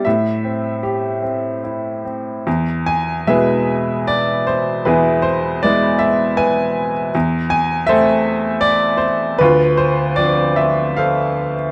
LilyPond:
<<
  \new Staff \with { instrumentName = "Grand piano" } { \time 3/4 \key a \minor \tempo 4 = 78 << { e''2 r4 | \key e \phrygian r8 gis''8 e''4 d''8 c''8 | b'8 c''8 d''8 e''8 gis''8. r16 | r8 gis''8 e''4 d''8 c''8 |
b'8 c''8 d''8 e''8 f''8. r16 | } \\ { r2. | r4 <gis' b'>4. r8 | <e' gis'>4. r8 <b' e''>4 | r4 <a' c''>4. r8 |
f'4. r8 <a' c''>4 | } >> }
  \new Staff \with { instrumentName = "Grand piano" } { \time 3/4 \key a \minor a,8 c'8 g'8 c'8 e'8 c'8 | \key e \phrygian e,4 <b, gis e'>2 | e,4 <gis b e'>2 | e,4 <a c'>2 |
d,4 <f c' d'>2 | }
>>